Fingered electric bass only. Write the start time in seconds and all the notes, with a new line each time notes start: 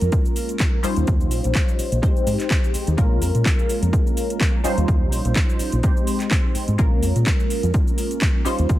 0.02 F2
0.84 muted fingered electric bass stroke
0.97 D#2
1.08 D#2
1.31 A#1
1.45 A#1
1.79 muted fingered electric bass stroke
1.92 A#1
2.27 G#2
2.74 muted fingered electric bass stroke
2.88 D#2
2.98 A#1
3.22 F2
3.35 A#2
3.82 F2
4.64 muted fingered electric bass stroke
4.78 D#2
4.88 D#2
5.12 A#1
5.25 A#1
5.60 muted fingered electric bass stroke
5.73 A#1
6.55 muted fingered electric bass stroke
6.68 G#2
6.79 A#1
7.03 F2
7.16 A#2
7.63 F2
8.46 muted fingered electric bass stroke
8.59 D#2
8.69 D#2